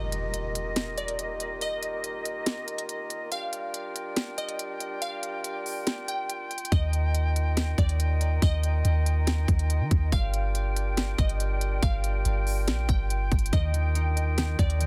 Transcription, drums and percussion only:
0.12 closed hi-hat
0.34 closed hi-hat
0.55 closed hi-hat
0.76 snare, closed hi-hat
0.98 closed hi-hat
1.08 closed hi-hat
1.19 closed hi-hat
1.40 closed hi-hat
1.61 closed hi-hat
1.83 closed hi-hat
2.04 closed hi-hat
2.25 closed hi-hat
2.46 snare, closed hi-hat
2.68 closed hi-hat
2.78 closed hi-hat
2.89 closed hi-hat
3.10 closed hi-hat
3.32 closed hi-hat
3.53 closed hi-hat
3.74 closed hi-hat
3.96 closed hi-hat
4.16 snare, closed hi-hat
4.38 closed hi-hat
4.49 closed hi-hat
4.59 closed hi-hat
4.80 closed hi-hat
5.02 closed hi-hat
5.23 closed hi-hat
5.44 closed hi-hat
5.66 open hi-hat
5.87 snare, closed hi-hat
6.08 closed hi-hat
6.30 closed hi-hat
6.51 closed hi-hat
6.58 closed hi-hat
6.65 closed hi-hat
6.72 kick, closed hi-hat
6.93 closed hi-hat
7.15 closed hi-hat
7.36 closed hi-hat
7.57 snare, closed hi-hat
7.78 kick, closed hi-hat
7.89 closed hi-hat
8.00 closed hi-hat
8.21 closed hi-hat
8.42 kick, closed hi-hat
8.63 closed hi-hat
8.85 closed hi-hat
9.06 closed hi-hat
9.27 snare, closed hi-hat
9.48 kick, closed hi-hat
9.59 closed hi-hat
9.70 closed hi-hat
9.91 kick, closed hi-hat
10.12 kick, closed hi-hat
10.34 closed hi-hat
10.55 closed hi-hat
10.77 closed hi-hat
10.97 snare, closed hi-hat
11.18 kick, closed hi-hat
11.29 closed hi-hat
11.40 closed hi-hat
11.61 closed hi-hat
11.83 kick, closed hi-hat
12.04 closed hi-hat
12.25 closed hi-hat
12.47 open hi-hat
12.68 snare, closed hi-hat
12.89 kick, closed hi-hat
13.10 closed hi-hat
13.32 kick, closed hi-hat
13.39 closed hi-hat
13.46 closed hi-hat
13.53 kick, closed hi-hat
13.74 closed hi-hat
13.95 closed hi-hat
14.17 closed hi-hat
14.38 snare, closed hi-hat
14.59 kick, closed hi-hat
14.70 closed hi-hat
14.81 closed hi-hat

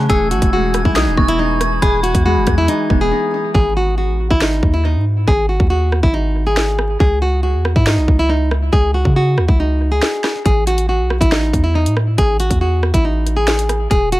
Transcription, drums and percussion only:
0.10 kick, closed hi-hat
0.31 closed hi-hat
0.42 kick, closed hi-hat
0.74 cross-stick, closed hi-hat
0.85 kick
0.96 snare, closed hi-hat
1.17 kick
1.28 closed hi-hat
1.61 cross-stick, closed hi-hat
1.82 kick, closed hi-hat
2.04 closed hi-hat
2.15 kick, closed hi-hat
2.47 kick, cross-stick, closed hi-hat
2.68 closed hi-hat
2.90 kick
3.55 kick
4.30 kick
4.41 snare
4.63 kick
5.28 kick
5.60 kick
5.92 cross-stick
6.03 kick
6.57 snare
6.79 cross-stick
7.00 kick
7.65 cross-stick
7.76 kick
7.87 snare
8.08 kick
8.51 cross-stick
8.73 kick
9.05 kick
9.38 cross-stick
9.48 kick
10.02 snare
10.24 cross-stick, snare
10.46 kick, closed hi-hat
10.67 closed hi-hat
10.78 closed hi-hat
11.10 cross-stick
11.21 kick, closed hi-hat
11.32 snare
11.53 kick, closed hi-hat
11.86 closed hi-hat
11.97 cross-stick
12.18 kick, closed hi-hat
12.40 closed hi-hat
12.51 kick, closed hi-hat
12.83 cross-stick
12.94 kick, closed hi-hat
13.27 closed hi-hat
13.48 snare, closed hi-hat
13.59 closed hi-hat
13.69 cross-stick, closed hi-hat
13.91 kick, closed hi-hat
14.12 closed hi-hat

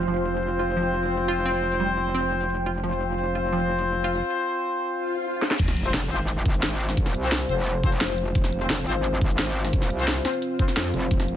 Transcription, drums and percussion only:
0.08 shaker
0.16 shaker
0.42 shaker
0.59 shaker
0.77 shaker
1.02 shaker
1.11 shaker
1.37 shaker
1.54 shaker
1.80 shaker
1.97 shaker
2.15 shaker
2.40 shaker
2.49 shaker
2.75 shaker
2.84 shaker
2.92 shaker
3.18 shaker
3.35 shaker
3.52 shaker
3.78 shaker
3.87 shaker
4.13 shaker
5.42 snare
5.51 snare
5.59 kick, closed hi-hat, crash, shaker
5.68 snare
5.77 closed hi-hat
5.85 shaker
5.94 snare, closed hi-hat
6.02 shaker
6.11 closed hi-hat, shaker
6.28 closed hi-hat, shaker
6.46 kick, closed hi-hat
6.54 closed hi-hat, shaker
6.63 snare, closed hi-hat, shaker
6.80 closed hi-hat, shaker
6.89 snare, shaker
6.97 kick, closed hi-hat, shaker
7.06 snare
7.15 closed hi-hat
7.23 shaker
7.32 snare, closed hi-hat
7.40 shaker
7.49 closed hi-hat, shaker
7.66 closed hi-hat, shaker
7.84 kick, closed hi-hat
7.92 closed hi-hat, shaker
8.01 snare, closed hi-hat, shaker
8.18 closed hi-hat, shaker
8.27 shaker
8.35 kick, closed hi-hat, shaker
8.44 snare
8.52 closed hi-hat
8.61 shaker
8.70 snare, closed hi-hat
8.78 shaker
8.87 closed hi-hat, shaker
9.04 closed hi-hat, shaker
9.21 kick, closed hi-hat
9.30 closed hi-hat, shaker
9.39 snare, closed hi-hat, shaker
9.56 closed hi-hat, shaker
9.65 snare, shaker
9.73 kick, closed hi-hat, shaker
9.82 snare
9.90 closed hi-hat
9.99 shaker
10.08 snare, closed hi-hat
10.16 shaker
10.25 snare, closed hi-hat, shaker
10.34 closed hi-hat
10.42 closed hi-hat, shaker
10.59 kick, closed hi-hat
10.68 snare, closed hi-hat, shaker
10.77 snare, closed hi-hat, shaker
10.94 closed hi-hat, shaker
11.02 shaker
11.11 kick, closed hi-hat, shaker
11.20 snare
11.28 closed hi-hat

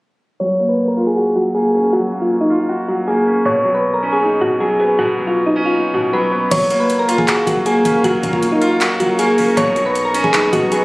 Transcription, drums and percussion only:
6.51 kick, closed hi-hat, crash
6.70 closed hi-hat
6.90 closed hi-hat
7.09 closed hi-hat
7.18 kick
7.28 clap, closed hi-hat
7.47 kick, closed hi-hat
7.66 closed hi-hat
7.85 kick, closed hi-hat
8.04 kick, closed hi-hat
8.23 kick, closed hi-hat
8.33 kick
8.43 closed hi-hat
8.62 closed hi-hat
8.81 clap, closed hi-hat
9.00 closed hi-hat
9.19 closed hi-hat
9.38 open hi-hat
9.57 kick, closed hi-hat
9.76 closed hi-hat
9.95 closed hi-hat
10.14 closed hi-hat
10.24 kick
10.34 clap, closed hi-hat
10.53 kick, closed hi-hat
10.72 closed hi-hat

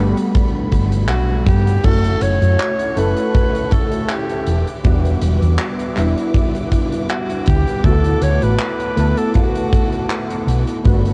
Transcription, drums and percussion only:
0.17 closed hi-hat
0.35 kick, closed hi-hat
0.72 kick, closed hi-hat
0.92 closed hi-hat
1.09 clap, closed hi-hat
1.47 kick, closed hi-hat
1.67 closed hi-hat
1.84 kick, closed hi-hat, crash
2.04 closed hi-hat
2.21 closed hi-hat
2.42 closed hi-hat
2.59 clap, closed hi-hat
2.79 closed hi-hat
2.97 closed hi-hat
3.16 closed hi-hat
3.34 kick, closed hi-hat
3.55 closed hi-hat
3.71 kick, closed hi-hat
3.92 closed hi-hat
4.09 clap, closed hi-hat
4.29 closed hi-hat
4.46 closed hi-hat
4.67 closed hi-hat
4.84 kick, closed hi-hat
5.05 closed hi-hat
5.22 closed hi-hat
5.42 closed hi-hat
5.58 clap, closed hi-hat
5.79 closed hi-hat
5.97 clap, closed hi-hat
6.18 closed hi-hat
6.34 kick, closed hi-hat
6.55 closed hi-hat
6.72 kick, closed hi-hat
6.92 closed hi-hat
7.09 clap, closed hi-hat
7.30 closed hi-hat
7.46 kick, closed hi-hat
7.68 closed hi-hat
7.84 kick, closed hi-hat
8.04 closed hi-hat
8.22 closed hi-hat
8.42 closed hi-hat
8.59 clap, closed hi-hat
8.80 closed hi-hat
8.97 closed hi-hat
9.17 closed hi-hat
9.34 kick, closed hi-hat
9.55 closed hi-hat
9.73 kick, closed hi-hat
9.92 closed hi-hat
10.10 clap, closed hi-hat
10.30 closed hi-hat
10.48 closed hi-hat
10.67 closed hi-hat
10.84 kick, closed hi-hat
11.05 closed hi-hat

